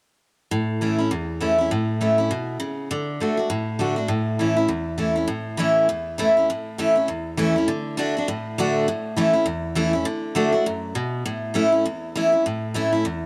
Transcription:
0.51 A2
0.81 E3 A3 C#4 E4
0.99 C#4 E4
1.11 E2
1.41 E3 A3 C#4 E4
1.58 C#4 E4
1.71 A2
2.01 E3 A3 C#4 E4
2.18 C#4 E4
2.31 B2
2.60 C#3
2.91 D3
3.20 D3 A3 D4 F#4
3.37 D4 F#4
3.50 A2
3.79 D3 A3 D4 F#4
3.96 D4 F#4
4.08 A2
4.39 E3 A3 C#4 E4
4.57 C#4 E4
4.68 E2
4.98 E3 A3 C#4 E4
5.16 C#4 E4
5.28 A2
5.57 E3 A3 C#4 E4
5.89 E2
6.18 E3 A3 C#4 E4
6.37 C#4 E4
6.50 A2
6.78 E3 A3 C#4 E4
6.95 C#4 E4
7.08 E2
7.37 E3 A3 C#4 E4
7.56 C#4 E4
7.68 D3
7.97 D3 A3 D4 F#4
8.17 D4 F#4
8.28 A2
8.58 D3 A3 D4 F#4
8.88 A2
9.17 E3 A3 C#4 E4
9.33 C#4 E4
9.46 E2
9.75 E3 A3 C#4 E4
9.93 C#4 E4
10.05 D3
10.35 D3 A3 D4 F#4
10.52 D4 F#4
10.66 F#2
10.95 B2
11.26 A2
11.54 E3 A3 C#4 E4
11.72 C#4 E4
11.86 E2
12.15 E3 A3 C#4 E4
12.32 C#4 E4
12.46 A2
12.74 E3 A3 C#4 E4
12.92 C#4 E4
13.05 E2

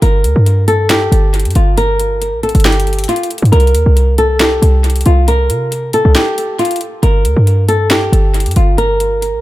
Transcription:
0.02 G1 A#4, closed hi-hat
0.24 D2, closed hi-hat
0.36 G2
0.46 closed hi-hat
0.68 A4, closed hi-hat
0.90 G4, snare, closed hi-hat
1.12 G1, closed hi-hat
1.34 closed hi-hat
1.40 closed hi-hat
1.45 G2, closed hi-hat
1.51 closed hi-hat
1.55 G1 F4, closed hi-hat
1.77 A#4, closed hi-hat
2.00 closed hi-hat
2.22 closed hi-hat
2.33 A#1
2.43 A4, closed hi-hat
2.49 closed hi-hat
2.55 G1, closed hi-hat
2.60 closed hi-hat
2.65 G4, snare, closed hi-hat
2.72 closed hi-hat
2.80 closed hi-hat
2.87 closed hi-hat
2.93 closed hi-hat
2.99 closed hi-hat
3.04 closed hi-hat
3.09 F4, closed hi-hat
3.16 closed hi-hat
3.23 closed hi-hat
3.30 closed hi-hat, open hi-hat
3.38 closed hi-hat
3.42 G2, closed hi-hat
3.52 C2 A#4, closed hi-hat
3.60 closed hi-hat
3.67 closed hi-hat
3.75 D#2, closed hi-hat
3.86 C2
3.97 closed hi-hat
4.18 A4, closed hi-hat
4.40 G4, snare, closed hi-hat
4.62 C2, closed hi-hat
4.84 closed hi-hat
4.90 closed hi-hat
4.96 closed hi-hat
5.01 closed hi-hat
5.06 C2 F4, closed hi-hat
5.28 A#4, closed hi-hat
5.50 C3, closed hi-hat
5.72 closed hi-hat
5.93 A4, closed hi-hat
6.05 C2
6.15 G4, snare, closed hi-hat
6.38 closed hi-hat
6.59 F4, closed hi-hat
6.65 closed hi-hat
6.71 closed hi-hat
6.76 closed hi-hat
6.81 closed hi-hat
7.03 G1 A#4, closed hi-hat
7.25 D2, closed hi-hat
7.37 G2
7.47 closed hi-hat
7.69 A4, closed hi-hat
7.90 G4, snare, closed hi-hat
8.12 G1, closed hi-hat
8.34 closed hi-hat
8.40 closed hi-hat
8.46 G2, closed hi-hat
8.51 closed hi-hat
8.56 G1 F4, closed hi-hat
8.78 A#4, closed hi-hat
9.00 closed hi-hat
9.22 closed hi-hat
9.34 A#1

